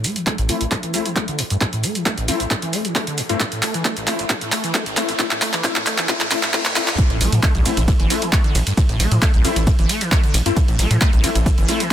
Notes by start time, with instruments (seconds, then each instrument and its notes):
Already playing: riser
0.04 acid bass A3, open hi-hat, shaker
0.16 acid bass E3, closed hi-hat, shaker
0.27 acid bass A3, kick, clap, closed hi-hat, shaker
0.38 acid bass A1, closed hi-hat, shaker
0.49 synth stab A3 C4 E4, acid bass A3, open hi-hat, shaker
0.61 acid bass A1, closed hi-hat, shaker
0.71 acid bass A2, kick, clap, closed hi-hat, shaker
0.83 acid bass E3, closed hi-hat, shaker
0.94 synth stab A3 C4 E4, acid bass A3, open hi-hat, shaker
1.06 acid bass E3, closed hi-hat, shaker
1.16 acid bass A3, kick, clap, closed hi-hat, shaker
1.28 acid bass D3, closed hi-hat, shaker
1.39 acid bass A2, open hi-hat, shaker
1.50 acid bass G2, closed hi-hat, shaker
1.61 acid bass A2, kick, clap, closed hi-hat, shaker
1.73 acid bass A2, closed hi-hat, shaker
1.84 acid bass A3, open hi-hat, shaker
1.95 acid bass E3, closed hi-hat, shaker
2.06 acid bass A3, kick, clap, closed hi-hat, shaker
2.18 acid bass A1, closed hi-hat, shaker
2.28 synth stab A3 C4 E4, acid bass A3, open hi-hat, shaker
2.40 acid bass A1, closed hi-hat, shaker
2.51 acid bass A2, kick, clap, closed hi-hat, shaker
2.62 acid bass E3, closed hi-hat, shaker
2.73 acid bass A3, open hi-hat, shaker
2.85 acid bass E3, closed hi-hat, shaker
2.95 acid bass A3, kick, clap, open hi-hat, shaker
3.07 acid bass D3, closed hi-hat, shaker
3.18 acid bass A2, open hi-hat, shaker
3.29 acid bass G2, synth stab A3 C4 E4, closed hi-hat, shaker
3.40 acid bass A2, kick, clap, closed hi-hat, shaker
3.52 acid bass A2, closed hi-hat, shaker
3.63 acid bass A3, clap, open hi-hat, shaker
3.74 acid bass E3, closed hi-hat, shaker
3.85 acid bass A3, kick, clap, closed hi-hat, shaker
3.97 acid bass A1, closed hi-hat, shaker
4.07 synth stab A3 C4 E4, acid bass A3, clap, open hi-hat, shaker
4.19 acid bass A1, closed hi-hat, shaker
4.30 acid bass A2, kick, clap, closed hi-hat, shaker
4.41 acid bass A2, closed hi-hat, shaker
4.52 acid bass A3, clap, open hi-hat, shaker
4.64 acid bass E3, closed hi-hat, shaker
4.74 acid bass A3, kick, clap, closed hi-hat, shaker
4.86 acid bass A1, closed hi-hat, shaker
4.97 synth stab A3 C4 E4, acid bass A3, clap, open hi-hat, shaker
5.09 acid bass A1, closed hi-hat, shaker
5.19 acid bass A2, synth stab A3 C4 E4, kick, clap, closed hi-hat, shaker
5.31 acid bass A2, clap, closed hi-hat, shaker
5.42 acid bass A3, clap, open hi-hat, shaker
5.53 acid bass E3, clap, closed hi-hat, shaker
5.64 acid bass A2, synth stab A3 C4 E4, kick, clap, closed hi-hat, shaker
5.76 acid bass A2, clap, closed hi-hat, shaker
5.86 acid bass A3, clap, open hi-hat, shaker
5.98 acid bass E3, clap, closed hi-hat, shaker
6.09 acid bass A2, synth stab A3 C4 E4, kick, clap, closed hi-hat, reverse cymbal, shaker
6.20 acid bass A2, clap, closed hi-hat, shaker
6.31 acid bass A2, synth stab A3 C4 E4, clap, open hi-hat, shaker
6.43 acid bass A2, clap, closed hi-hat, shaker
6.53 acid bass A2, synth stab A3 C4 E4, kick, clap, open hi-hat, shaker
6.65 acid bass A2, clap, closed hi-hat, shaker
6.76 acid bass A2, synth stab A3 C4 E4, clap, open hi-hat, shaker
6.88 acid bass A2, clap, closed hi-hat, shaker
6.98 acid bass A2, kick, closed hi-hat, ride, shaker
7.10 analog synth bass A1, acid bass A2, ride, shaker
7.21 analog synth bass A1, acid bass A3, open hi-hat, ride, shaker
7.32 analog synth bass A2, acid bass E3, closed hi-hat, ride, shaker
7.43 acid bass A3, kick, clap, closed hi-hat, ride, shaker
7.55 acid bass A1, analog synth bass C2, ride, shaker
7.65 acid bass A3, synth stab A3 C4 E4, open hi-hat, ride, shaker
7.77 acid bass A1, analog synth bass A1, closed hi-hat, ride, shaker
7.88 acid bass A2, kick, closed hi-hat, ride, shaker
7.99 analog synth bass G1, acid bass E3, ride, shaker
8.10 acid bass A3, synth stab A3 C4 E4, open hi-hat, ride, shaker
8.22 acid bass E3, closed hi-hat, ride, shaker
8.33 acid bass A3, kick, clap, closed hi-hat, ride, shaker
8.44 acid bass D3, ride, shaker
8.55 analog synth bass A1, acid bass A2, open hi-hat, ride, shaker
8.67 acid bass G2, closed hi-hat, ride, shaker
8.77 acid bass A2, kick, closed hi-hat, ride, shaker
8.89 analog synth bass A1, acid bass A2, ride, shaker
9.00 analog synth bass A1, acid bass A3, open hi-hat, ride, shaker
9.11 analog synth bass A2, acid bass E3, closed hi-hat, ride, shaker
9.22 acid bass A3, kick, clap, closed hi-hat, ride, shaker
9.34 acid bass A1, analog synth bass C2, ride, shaker
9.44 acid bass A3, synth stab A3 C4 E4, open hi-hat, ride, shaker
9.56 acid bass A1, analog synth bass A1, closed hi-hat, ride, shaker
9.67 acid bass A2, kick, closed hi-hat, ride, shaker
9.79 analog synth bass G1, acid bass E3, ride, shaker
9.89 acid bass A3, open hi-hat, ride, shaker
10.01 acid bass E3, closed hi-hat, ride, shaker
10.12 acid bass A3, kick, clap, open hi-hat, ride, shaker
10.23 acid bass D3, ride, shaker
10.34 analog synth bass A1, acid bass A2, open hi-hat, ride, shaker
10.46 acid bass G2, synth stab A3 C4 E4, closed hi-hat, ride, shaker
10.57 acid bass A2, kick, closed hi-hat, ride, shaker
10.68 analog synth bass A1, acid bass A2, ride, shaker
10.79 analog synth bass A1, acid bass A3, open hi-hat, ride, shaker
10.91 analog synth bass A2, acid bass E3, closed hi-hat, ride, shaker
11.01 acid bass A3, kick, clap, closed hi-hat, ride, shaker
11.13 acid bass A1, analog synth bass C2, ride, shaker
11.24 synth stab A3 C4 E4, acid bass A3, open hi-hat, ride, shaker
11.35 analog synth bass A1, acid bass A1, closed hi-hat, ride, shaker
11.46 acid bass A2, kick, closed hi-hat, ride, shaker
11.58 analog synth bass G1, acid bass E3, ride, shaker
11.68 synth stab A3 C4 E4, acid bass A3, open hi-hat, ride, shaker
11.80 acid bass E3, closed hi-hat, ride, shaker